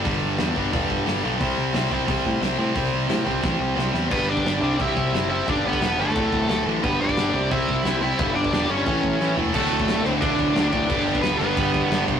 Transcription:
<<
  \new Staff \with { instrumentName = "Overdriven electric guitar" } { \time 4/4 \key g \major \tempo 4 = 177 r1 | r1 | r1 | <b b'>8 <d' d''>4. <e' e''>4. <e' e''>8 |
<d' d''>8 <b b'>4 <a a'>2 r8 | <b b'>8 <d' d''>4. <e' e''>4. <e' e''>8~ | <e' e''>8 <d' d''>8 <d' d''>8 <cis' cis''>2 r8 | <a a'>4. <c' c''>8 <d' d''>4. <d' d''>8~ |
<d' d''>4 <b b'>8 <b b'>2 r8 | }
  \new Staff \with { instrumentName = "Distorted electric guitar" } { \clef bass \time 4/4 \key g \major <g, d g>4 <g, d g>8 <g, d g>8 <g, d g>4 <g, d g>8 <g, d g>8 | <c g c'>4 <c g c'>8 <c g c'>8 <c g c'>4 <c g c'>8 <c g c'>8 | <c g c'>4 <c g c'>8 <c g c'>8 <c g c'>4 <c g c'>8 <c g c'>8 | <g, d g>4 <g, d g>8 <c g c'>8 <c g c'>4 <c g c'>8 <c g c'>8 |
<g, d g>4 <g, d g>8 <g, d g>8 <d, a, d>4 <d, a, d>8 <d, a, d>8 | <g, d g>4 <g, d g>8 <c g c'>8 <c g c'>4 <c g c'>8 <c g c'>8 | <g, d g>4 <g, d g>8 <g, d g>8 <a, e a>4 <a, e a>8 <a, e a>8 | <d, a, d a fis'>2 <d, a, d a fis'>2 |
<g, d g b d' g'>2 <g, d g b d' g'>2 | }
  \new Staff \with { instrumentName = "Distorted electric guitar" } { \clef bass \time 4/4 \key g \major <g, d g>4 <g, d g>8 <g, d g>8 <g, d g>4 <g, d g>8 <g, d g>8 | <c g c'>4 <c g c'>8 <c g c'>8 <c g c'>4 <c g c'>8 <c g c'>8 | <c g c'>4 <c g c'>8 <c g c'>8 <c g c'>4 <c g c'>8 <c g c'>8 | <g, d g>4 <g, d g>8 <c g c'>8 <c g c'>4 <c g c'>8 <c g c'>8 |
<g, d g>4 <g, d g>8 <g, d g>8 <d, a, d>4 <d, a, d>8 <d, a, d>8 | <g, d g>4 <g, d g>8 <c g c'>8 <c g c'>4 <c g c'>8 <c g c'>8 | <g, d g>4 <g, d g>8 <g, d g>8 <a, e a>4 <a, e a>8 <a, e a>8 | <d, a, d>4. <d, a, d>4. <d, a, d>4 |
<g, d g>4. <g, d g>4. <g, d g>4 | }
  \new Staff \with { instrumentName = "Distorted electric guitar" } { \clef bass \time 4/4 \key g \major r1 | r1 | r1 | r1 |
r1 | r1 | r1 | <d, a, d>4. <d, a, d>4. <d, a, d>4 |
<g, d g>4. <g, d g>4. <g, d g>4 | }
  \new Staff \with { instrumentName = "Picked electric bass" } { \clef bass \time 4/4 \key g \major g,,8 g,,8 e,8 g,,8 e,,8 g,,8 g,,8 b,,8 | c,8 c,8 c,8 c,8 c,8 a,8 c,8 a,8 | c,8 c,8 a,8 c,8 a,,8 c,8 c,8 e,8 | g,,8 g,,8 g,,8 c,8 c,8 c,8 fis,,4 |
g,,8 g,,8 e,,8 g,,8 d,,8 d,,8 d,,8 a,,8 | g,,8 g,,8 g,,8 c,8 c,8 c,8 c,4 | g,,8 g,,8 e,,8 g,,8 a,,8 a,,8 a,,8 e,,8 | d,,8 d,,8 d,,8 d,,8 d,,8 d,,8 d,,8 d,,8 |
g,,8 g,,8 d,,8 g,,8 g,,4 g,,8 c,8 | }
  \new DrumStaff \with { instrumentName = "Drums" } \drummode { \time 4/4 <hho bd>4 <hho sn>8 bd8 <hho bd>8 bd8 <hho sn>4 | <hho bd>4 <hho sn>8 bd8 <hho bd>8 bd8 <hho sn>4 | <hho bd>4 <hho sn>8 bd8 <bd sn>4 sn8 sn8 | <cymc bd>8. bd16 <cymc sn>4 <cymc bd>8 bd8 <cymc sn>4 |
<cymc bd>8. bd16 <cymc sn>4 <cymc bd>8 bd8 <cymc sn>4 | <cymc bd>8. bd16 <cymc sn>4 <cymc bd>8 bd8 <cymc sn>4 | <cymc bd>8. bd16 <cymc sn>4 <cymc bd>8 bd8 sn8 tomfh8 | <cymc bd>8 cymc16 bd16 <cymc sn>8 cymc8 <cymc bd>8 <cymc bd>8 <cymc sn>8 <cymc bd>8 |
<cymc bd>8 cymc16 bd16 <cymc sn>8 cymc8 <cymc bd>8 <cymc bd>8 <cymc sn>8 <cymc bd>8 | }
>>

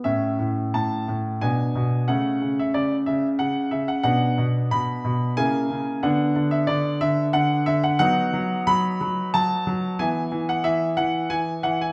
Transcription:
<<
  \new Staff \with { instrumentName = "Grand piano" } { \time 3/4 \key b \dorian \tempo 4 = 91 << { e''4 a''4 gis''4 | fis''8. e''16 d''8 e''8 fis''8 e''16 fis''16 | fis''4 b''4 gis''4 | fis''8. e''16 d''8 e''8 fis''8 e''16 fis''16 |
\key e \major fis''4 b''4 a''4 | gis''8. fis''16 e''8 fis''8 gis''8 fis''16 gis''16 | } \\ { <cis' e'>2 <b d'>4 | <a cis'>2. | <b d'>2 <ais e'>4 | <b d'>2. |
<b dis'>2. | <b e'>2. | } >> }
  \new Staff \with { instrumentName = "Grand piano" } { \clef bass \time 3/4 \key b \dorian a,8 a,8 a,8 a,8 b,8 b,8 | cis8 cis8 cis8 cis8 cis8 cis8 | b,8 b,8 b,8 b,8 cis8 cis8 | d8 d8 d8 d8 d8 d8 |
\key e \major fis8 fis8 fis8 fis8 fis8 fis8 | e8 e8 e8 e8 e8 e8 | }
>>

